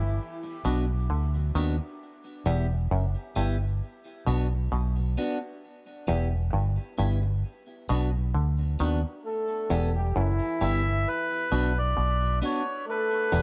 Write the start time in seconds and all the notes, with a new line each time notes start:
Already playing: G1 E3 E4
0.43 muted clean electric guitar stroke
0.65 B1 B2 B3 D4 F#4
1.10 D2 D3
1.55 D#2 D#3 B3 D4 F#4
2.46 E1 E2 B3 E4 G4
2.91 F#1 F#2
3.36 G1 G2 B3 E4 G4
4.27 B1 B2 B3 D4 F#4
4.72 B1 B2
5.17 B3 D4 F#4
6.07 E1 E2 B3 E4 G4
6.53 G1 G2
6.98 G1 G2 B3 E4 G4
7.22 muted clean electric guitar stroke
7.89 B1 B2 B3 D4 F#4
8.34 D2 D3
8.79 D#2 D#3 B3 D4 F#4
9.25 A3 A4
9.70 E1 E2 B3 E4 G4
9.95 G3 G4
10.16 F#1 F#2 E3 E4
10.61 G1 G2 B3 E4 G4 E5
11.08 B4
11.52 B1 B2 B3 D4 F#4
11.78 D5
11.97 B1 B2
12.42 B3 D4 F#4 C#5
12.87 A3 A4 B4
13.32 E1 E2 B3 E4 G4